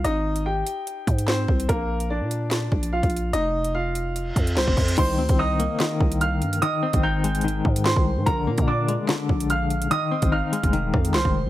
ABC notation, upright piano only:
X:1
M:4/4
L:1/8
Q:1/4=146
K:Cm
V:1 name="Upright piano"
[Ee]2 [Gg]4 [Cc]2 | [B,B]2 [Dd]4 [Ff]2 | [Ee]2 [Ff]4 [Cc]2 | [cc']2 [ee']4 [ff']2 |
[ee']2 [gg']4 [cc']2 | [Bb]2 [dd']4 [ff']2 | [ee']2 [ff']4 [cc']2 |]